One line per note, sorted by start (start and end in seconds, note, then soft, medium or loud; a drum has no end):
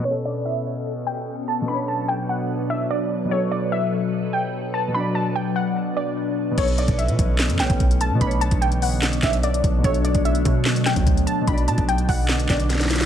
0.00 1.60 B2 medium
0.00 1.64 B3 medium
0.05 6.54 B2 medium
0.05 1.66 B3 medium
0.05 1.66 C#4 medium
0.05 1.66 A4 medium
0.05 0.21 C#5 loud
0.11 1.68 A4 medium
0.26 0.41 D5 medium
0.45 1.03 E5 medium
1.07 1.45 G5 medium
1.48 1.64 A5 medium
1.62 3.24 B2 medium
1.62 3.27 B3 medium
1.68 6.54 F#3 medium
1.68 3.30 D4 medium
1.68 3.29 D4 medium
1.68 6.54 B4 loud
1.68 1.84 B5 medium
1.74 3.31 C#5 medium
1.88 2.04 A5 medium
2.08 2.24 G5 medium
2.29 2.68 F#5 medium
2.70 2.86 E5 medium
2.91 3.06 D5 medium
3.25 4.87 B2 medium
3.25 4.90 F#3 medium
3.31 4.93 A4 medium
3.31 4.92 A4 medium
3.31 3.47 C#5 medium
3.37 4.94 C#5 medium
3.52 3.67 D5 medium
3.72 4.30 E5 medium
4.33 4.72 G5 medium
4.74 4.90 A5 medium
4.88 6.50 B2 medium
4.88 6.53 F#3 medium
4.95 6.56 D4 medium
4.95 6.55 D4 medium
4.95 5.10 B5 medium
5.00 6.57 D5 medium
5.15 5.31 A5 medium
5.36 5.51 G5 medium
5.56 5.94 F#5 medium
5.97 6.54 D5 medium
6.51 7.54 B2 medium
6.51 7.57 B3 medium
6.58 6.87 B1 loud
6.58 8.19 E3 medium
6.58 8.19 A3 medium
6.58 8.19 C#4 loud
6.58 7.59 A4 medium
6.58 6.74 C#5 loud
6.58 kick loud
6.58 closed hi-hat medium
6.58 crash loud
6.63 7.61 C#5 medium
6.68 closed hi-hat medium
6.78 6.94 D5 medium
6.78 closed hi-hat medium
6.88 7.10 B1 loud
6.88 kick medium
6.88 closed hi-hat medium
6.98 7.56 E5 medium
6.98 closed hi-hat medium
7.08 7.19 B2 loud
7.08 closed hi-hat soft
7.19 7.51 B1 loud
7.19 kick medium
7.19 closed hi-hat medium
7.39 snare loud
7.39 clap medium
7.39 closed hi-hat medium
7.50 7.61 F#2 loud
7.50 closed hi-hat medium
7.57 7.70 B1 loud
7.57 8.14 B2 medium
7.57 8.18 B3 medium
7.57 8.22 A4 soft
7.57 7.98 G5 medium
7.57 snare medium
7.57 clap medium
7.57 closed hi-hat medium
7.63 8.23 C#5 medium
7.70 8.12 B1 loud
7.70 kick loud
7.70 closed hi-hat medium
7.80 kick loud
7.80 closed hi-hat medium
7.91 closed hi-hat medium
8.01 8.17 A5 medium
8.01 closed hi-hat medium
8.11 8.21 B2 loud
8.15 9.77 B2 medium
8.15 9.80 B3 medium
8.21 8.50 B1 loud
8.21 9.83 D3 medium
8.21 9.83 B3 medium
8.21 13.06 D4 loud
8.21 9.82 D4 medium
8.21 8.37 B5 medium
8.21 kick loud
8.21 closed hi-hat medium
8.27 9.84 C#5 medium
8.31 closed hi-hat medium
8.41 8.57 A5 medium
8.41 closed hi-hat medium
8.51 9.20 B1 loud
8.51 kick medium
8.51 closed hi-hat medium
8.62 8.78 G5 medium
8.62 closed hi-hat medium
8.72 closed hi-hat soft
8.82 9.21 F#5 medium
8.82 open hi-hat medium
9.02 snare loud
9.02 clap medium
9.02 closed hi-hat medium
9.13 closed hi-hat medium
9.22 9.62 B1 loud
9.22 9.39 E5 medium
9.22 kick medium
9.22 snare loud
9.22 clap medium
9.22 closed hi-hat medium
9.33 closed hi-hat medium
9.43 9.59 D5 medium
9.43 closed hi-hat medium
9.54 closed hi-hat medium
9.64 9.84 B1 loud
9.64 kick loud
9.64 closed hi-hat medium
9.78 11.40 B2 medium
9.78 11.43 F#3 medium
9.84 10.14 B1 loud
9.84 11.46 F#3 medium
9.84 11.46 A3 medium
9.84 11.45 A4 medium
9.84 10.00 C#5 loud
9.84 kick loud
9.84 closed hi-hat medium
9.90 11.47 C#5 medium
9.94 closed hi-hat medium
10.05 10.20 D5 medium
10.05 closed hi-hat medium
10.15 10.44 B1 loud
10.15 kick medium
10.15 closed hi-hat medium
10.25 10.83 E5 medium
10.25 closed hi-hat medium
10.35 closed hi-hat soft
10.45 10.95 B2 loud
10.45 kick medium
10.45 closed hi-hat medium
10.65 snare loud
10.65 clap medium
10.65 closed hi-hat medium
10.76 closed hi-hat medium
10.86 11.25 G5 medium
10.86 snare loud
10.86 clap medium
10.86 closed hi-hat medium
10.96 11.26 D2 loud
10.96 kick loud
10.96 closed hi-hat medium
11.07 kick loud
11.07 closed hi-hat medium
11.17 closed hi-hat medium
11.27 11.43 A5 medium
11.27 closed hi-hat medium
11.42 13.03 B2 medium
11.42 13.06 F#3 medium
11.48 11.69 B1 loud
11.48 13.06 D3 medium
11.48 13.06 B3 medium
11.48 13.06 D4 medium
11.48 11.63 B5 medium
11.48 kick loud
11.48 closed hi-hat medium
11.53 13.06 D5 medium
11.58 closed hi-hat medium
11.68 11.78 B2 loud
11.68 11.84 A5 medium
11.68 closed hi-hat medium
11.78 12.08 B1 loud
11.78 kick medium
11.78 closed hi-hat medium
11.89 12.04 G5 medium
11.89 closed hi-hat medium
11.98 closed hi-hat soft
12.09 12.48 B1 loud
12.09 12.47 F#5 loud
12.09 kick medium
12.09 open hi-hat medium
12.28 snare loud
12.28 clap medium
12.28 closed hi-hat medium
12.40 closed hi-hat medium
12.49 13.06 B1 loud
12.49 13.06 D5 medium
12.49 kick medium
12.49 snare loud
12.49 clap medium
12.49 closed hi-hat medium
12.60 closed hi-hat medium
12.70 snare medium
12.70 closed hi-hat medium
12.75 snare medium
12.80 snare medium
12.80 closed hi-hat medium
12.85 snare medium
12.90 snare medium
12.90 closed hi-hat medium
12.96 snare medium
12.96 closed hi-hat medium
13.01 snare loud
13.01 closed hi-hat medium